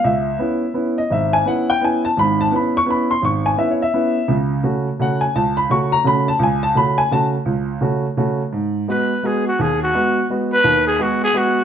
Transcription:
X:1
M:3/4
L:1/8
Q:"Swing" 1/4=170
K:C#m
V:1 name="Trumpet"
z6 | z6 | z6 | z6 |
z6 | z6 | z6 | z6 |
[K:G#m] z2 B2 G F | G F3 z B- | B G F G F2 |]
V:2 name="Grand piano"
e4 z d | e g f =g ^g a | b a b c' b ^b | c' g (3e c e- e2 |
z4 f g | a b c' ^a b =a | g a b g a z | z6 |
[K:G#m] z6 | z6 | z6 |]
V:3 name="Grand piano"
C,,2 [B,CE] z [B,CE] z | G,,,2 [B,CE] z [B,CE] z | [G,,,G,,]2 [B,CE] z [B,CE] z | G,,,2 [B,CE] z [B,CE] z |
[C,,C,]2 [C,A,CF] z [C,A,CF] z | C,,2 [C,A,CF] z [C,A,CF] z | C,,2 [C,A,CF] z [C,A,CF] z | C,,2 [C,A,CF] z [C,A,CF] z |
[K:G#m] G,,2 [G,B,F] z [G,B,F] z | D,,2 [G,B,F] z [G,B,F] z | [D,,D,]2 [G,B,F] z [G,B,F] z |]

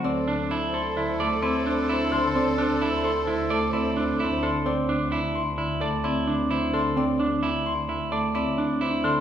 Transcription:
X:1
M:5/4
L:1/8
Q:1/4=130
K:Ador
V:1 name="Harp"
[Acda]2 a c'2 A d2 c c' | d2 a c'2 A d2 c c' | d2 a c'2 A d2 c c' | d2 a c'2 A d2 c c' |]
V:2 name="Violin section"
[Ac]8- [Ac]2- | [Ac]8- [Ac] z | z8 z2 | z8 z2 |]
V:3 name="Clarinet"
A8- A2- | A8- A z | z8 z2 | z8 z2 |]
V:4 name="Clean electric guitar"
C D E A E d E D E A | C D E A E d E D E A | C D E z E d E D E A | C D E z E d E D E A |]
V:5 name="Marimba" clef=bass
z D, z2 D, A, C z D D, | z D, z2 D, A, C z D D, | z D, z2 D, A, C z D D, | z D, z2 D, A, C z D D, |]
V:6 name="Double bass" clef=bass
D,,8- D,,2- | D,,8- D,,2- | D,,8- D,,2- | D,,8- D,,2 |]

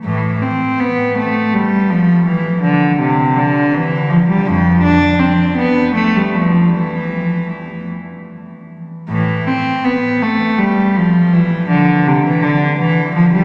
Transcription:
X:1
M:6/8
L:1/16
Q:3/8=54
K:Ephr
V:1 name="Cello" clef=bass
[A,,E,]2 C2 B,2 A,2 G,2 F,2 | E,2 D,2 C,2 D,2 E,2 F, G, | [F,,F,]2 D2 C2 B,2 A, G, F,2 | E,6 z6 |
[A,,E,]2 C2 B,2 A,2 G,2 F,2 | E,2 D,2 C, E, D,2 E,2 F, G, |]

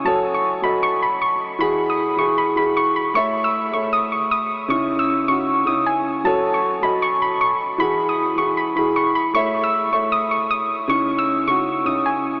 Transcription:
X:1
M:4/4
L:1/16
Q:1/4=155
K:F#dor
V:1 name="Synth pluck"
a3 c'3 b2 c'2 b2 c'2 z2 | b3 d'3 c'2 b2 b2 c'2 b2 | c'3 e'3 c'2 d'2 c'2 d'2 z2 | c'3 e'3 c'4 d'2 g2 z2 |
a3 c'3 b2 c'2 b2 c'2 z2 | b3 d'3 c'2 b2 b2 c'2 b2 | c'3 e'3 c'2 d'2 c'2 d'2 z2 | c'3 e'3 c'4 d'2 g2 z2 |]
V:2 name="Grand piano"
[F,FAc]4 z2 [F,FAd]6 z4 | [E,EFG]4 z2 [E,EFG]2 z2 [E,EFG]4 z2 | [A,Ace]4 z2 [A,Ace]6 z4 | [C,CDE]4 z2 [C,CDF]2 z2 [C,CDE]4 z2 |
[F,FAc]4 z2 [F,FAd]6 z4 | [E,EFG]4 z2 [E,EFG]2 z2 [E,EFG]4 z2 | [A,Ace]4 z2 [A,Ace]6 z4 | [C,CDE]4 z2 [C,CDF]2 z2 [C,CDE]4 z2 |]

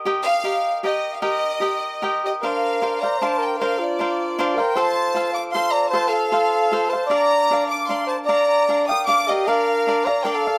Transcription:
X:1
M:3/4
L:1/16
Q:"Swing" 1/4=153
K:Eb
V:1 name="Violin section"
z2 f6 e3 f | e8- e2 e2 | [K:Bb] f6 b2 a2 g2 | f2 d8 g2 |
a6 d'2 c'2 b2 | a2 f8 a2 | b6 d'2 c'2 a2 | b6 e'2 d'2 e2 |
f6 b2 g f3 |]
V:2 name="Cavaquinho"
[GBeg]4 [GBeg]4 [GBeg]4 | [GBeg]4 [GBeg]4 [GBeg]4 | [K:Bb] [DBcf]4 [DBcf]2 [Bcf]2 [DBcf]4 | [DBcf]4 [DBcf]4 [DBcf]2 [Bcf]2 |
[FAcf]4 [FAcf]4 [FAcf]4 | [FAcf]4 [FAcf]4 [FAcf]2 [Acf]2 | [DBdf]4 [DBdf]4 [DBdf]4 | [DBdf]4 [DBdf]2 [Bdf]2 [DBdf]2 [Bdf]2 |
[DBdf]4 [DBdf]2 [Bdf]2 [DBdf]2 [Bdf]2 |]
V:3 name="Trumpet"
z12 | z8 z2 G2 | [K:Bb] B6 d2 c2 B2 | B2 F8 B2 |
c6 f2 f2 d2 | c2 A8 c2 | d6 f2 f2 c2 | d6 g2 f2 G2 |
B6 d2 B A3 |]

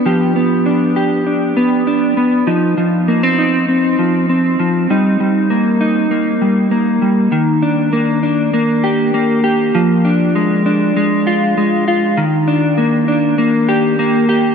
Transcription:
X:1
M:4/4
L:1/16
Q:1/4=99
K:Eb
V:1 name="Clean electric guitar"
[F,=B,DG]2 B,2 D2 G2 D2 B,2 D2 B,2 | [F,E]2 F,2 B, C E2 C2 F,2 C2 F,2 | [G,E]2 G,2 B,2 E2 B,2 G,2 B,2 G,2 | E,2 D2 B,2 D2 B,2 G2 B,2 G2 |
F,2 D2 A,2 D2 A,2 F2 A,2 F2 | E,2 D2 B,2 D2 B,2 G2 B,2 G2 |]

